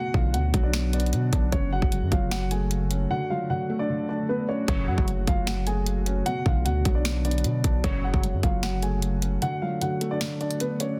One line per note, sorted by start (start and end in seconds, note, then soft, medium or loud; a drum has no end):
0.00 0.33 B2 medium
0.00 1.51 D3 medium
0.00 1.51 B3 medium
0.00 0.12 F#4 medium
0.00 3.06 F#4 loud
0.00 0.12 F#5 loud
0.14 0.35 B1 loud
0.14 1.13 D3 medium
0.14 0.32 F4 medium
0.14 0.32 F5 medium
0.14 kick loud
0.34 0.53 D2 loud
0.34 0.72 B2 medium
0.34 0.62 F#4 medium
0.34 0.62 F#5 medium
0.34 closed hi-hat medium
0.54 1.14 B1 loud
0.54 1.52 F#3 loud
0.54 kick medium
0.54 closed hi-hat medium
0.63 0.92 D4 medium
0.63 0.91 D5 medium
0.73 1.53 B2 medium
0.73 finger snap medium
0.73 snare loud
0.73 closed hi-hat medium
0.93 1.53 B3 medium
0.93 1.49 D4 medium
0.93 1.49 D5 medium
0.93 closed hi-hat medium
1.00 closed hi-hat medium
1.06 closed hi-hat soft
1.13 1.32 B2 loud
1.13 closed hi-hat medium
1.33 1.52 B1 loud
1.33 1.52 D4 medium
1.33 kick loud
1.33 closed hi-hat medium
1.52 1.81 F#1 loud
1.52 1.91 F#2 loud
1.52 3.09 C#3 medium
1.52 6.22 A3 medium
1.52 1.70 C#4 medium
1.52 1.70 C#5 medium
1.52 kick loud
1.52 closed hi-hat medium
1.72 2.71 C#3 medium
1.72 2.10 F#4 medium
1.72 2.09 F#5 medium
1.82 2.03 F#1 loud
1.82 kick loud
1.92 2.30 F#2 medium
1.92 closed hi-hat medium
2.02 2.11 F#2 loud
2.11 3.06 F#1 loud
2.11 3.10 F#3 loud
2.11 2.29 F4 medium
2.11 2.29 F5 medium
2.11 kick medium
2.11 closed hi-hat medium
2.31 3.10 F#2 medium
2.31 2.49 F#4 medium
2.31 2.49 F#5 loud
2.31 finger snap medium
2.31 snare loud
2.31 closed hi-hat medium
2.51 3.10 A3 medium
2.51 3.07 G#4 medium
2.51 3.07 G#5 medium
2.51 closed hi-hat medium
2.71 closed hi-hat medium
2.91 3.10 C#4 medium
2.91 closed hi-hat medium
3.10 4.67 D3 medium
3.10 3.48 D3 medium
3.10 10.96 F#4 loud
3.10 3.28 F#4 medium
3.10 3.28 F#5 loud
3.30 4.29 F#3 medium
3.30 3.48 F4 medium
3.30 3.47 F5 medium
3.50 3.88 D3 medium
3.50 3.78 F#4 medium
3.50 3.78 F#5 medium
3.70 4.68 A3 loud
3.79 4.08 D4 medium
3.79 4.07 D5 medium
3.89 4.68 D3 medium
4.09 4.68 D4 medium
4.09 4.27 D4 medium
4.09 4.26 D5 medium
4.29 4.47 B3 medium
4.29 4.46 B4 medium
4.48 4.66 C#4 medium
4.48 4.66 C#5 medium
4.48 4.68 D5 medium
4.68 4.89 F#1 loud
4.68 5.06 F#2 medium
4.68 5.06 A2 loud
4.68 6.24 C#3 medium
4.68 5.06 C#3 loud
4.68 5.06 F#3 loud
4.68 4.86 C#4 medium
4.68 4.86 C#5 loud
4.68 kick loud
4.68 closed hi-hat medium
4.88 4.97 F#2 loud
4.88 5.87 C#3 medium
4.88 5.25 F#4 medium
4.88 5.25 F#5 medium
4.98 5.26 F#1 loud
4.98 kick loud
5.08 5.46 F#2 medium
5.08 closed hi-hat medium
5.27 6.22 F#1 loud
5.27 6.26 F#3 medium
5.27 5.45 F4 medium
5.27 5.45 F5 medium
5.27 kick medium
5.27 closed hi-hat medium
5.47 6.26 F#2 medium
5.47 5.65 F#4 medium
5.47 5.64 F#5 medium
5.47 finger snap medium
5.47 snare loud
5.47 closed hi-hat medium
5.67 6.26 A3 medium
5.67 6.23 G#4 medium
5.67 6.23 G#5 medium
5.67 closed hi-hat medium
5.86 closed hi-hat medium
6.06 6.26 C#4 medium
6.06 closed hi-hat medium
6.26 6.64 B2 medium
6.26 7.82 D3 medium
6.26 7.82 B3 medium
6.26 6.44 F#4 medium
6.26 6.43 F#5 loud
6.26 closed hi-hat medium
6.46 6.67 B1 loud
6.46 7.45 D3 medium
6.46 6.64 F4 medium
6.46 6.63 F5 medium
6.46 kick loud
6.65 6.84 D2 loud
6.65 7.04 B2 medium
6.65 6.94 F#4 medium
6.65 6.93 F#5 medium
6.65 closed hi-hat medium
6.85 7.46 B1 loud
6.85 7.84 F#3 loud
6.85 kick medium
6.85 closed hi-hat medium
6.95 7.23 D4 medium
6.95 7.23 D5 medium
7.05 7.84 B2 medium
7.05 finger snap medium
7.05 snare loud
7.05 closed hi-hat medium
7.25 7.84 B3 medium
7.25 7.81 D4 medium
7.25 7.80 D5 medium
7.25 closed hi-hat medium
7.31 closed hi-hat medium
7.38 closed hi-hat soft
7.44 7.63 B2 loud
7.44 closed hi-hat medium
7.64 7.83 B1 loud
7.64 7.84 D4 medium
7.64 kick medium
7.64 closed hi-hat medium
7.84 8.12 F#1 loud
7.84 8.22 F#2 loud
7.84 8.22 A2 loud
7.84 9.40 C#3 medium
7.84 8.22 C#3 loud
7.84 8.22 F#3 loud
7.84 10.97 A3 medium
7.84 8.02 C#4 medium
7.84 8.01 C#5 loud
7.84 kick loud
7.84 closed hi-hat medium
8.04 9.02 C#3 medium
8.04 8.41 F#4 medium
8.04 8.41 F#5 medium
8.14 8.35 F#1 loud
8.14 kick loud
8.23 8.61 F#2 medium
8.23 closed hi-hat medium
8.33 8.43 F#2 loud
8.43 9.38 F#1 loud
8.43 9.42 F#3 loud
8.43 8.61 F4 medium
8.43 8.60 F5 medium
8.43 kick medium
8.43 closed hi-hat medium
8.63 9.42 F#2 medium
8.63 8.81 F#4 medium
8.63 8.80 F#5 loud
8.63 finger snap medium
8.63 snare loud
8.63 closed hi-hat medium
8.82 9.42 A3 medium
8.82 9.39 G#4 medium
8.82 9.38 G#5 medium
8.82 closed hi-hat medium
9.02 closed hi-hat medium
9.22 9.42 C#4 medium
9.22 closed hi-hat medium
9.42 9.80 D3 loud
9.42 10.98 D3 medium
9.42 9.60 F#4 medium
9.42 9.59 F#5 loud
9.42 closed hi-hat medium
9.62 10.60 F#3 medium
9.62 9.80 F4 medium
9.62 9.79 F5 medium
9.81 10.20 D3 medium
9.81 10.10 F#4 medium
9.81 10.09 F#5 medium
9.81 closed hi-hat medium
10.01 11.00 A3 loud
10.01 closed hi-hat medium
10.11 10.39 D4 medium
10.11 10.39 D5 medium
10.21 11.00 D3 medium
10.21 finger snap medium
10.21 snare loud
10.21 closed hi-hat medium
10.41 11.00 D4 medium
10.41 10.58 D4 medium
10.41 10.58 D5 medium
10.41 closed hi-hat soft
10.51 closed hi-hat medium
10.60 10.78 B3 medium
10.60 10.78 B4 medium
10.60 closed hi-hat medium
10.80 10.98 C#4 medium
10.80 10.98 C#5 medium
10.80 11.00 D5 medium
10.80 closed hi-hat medium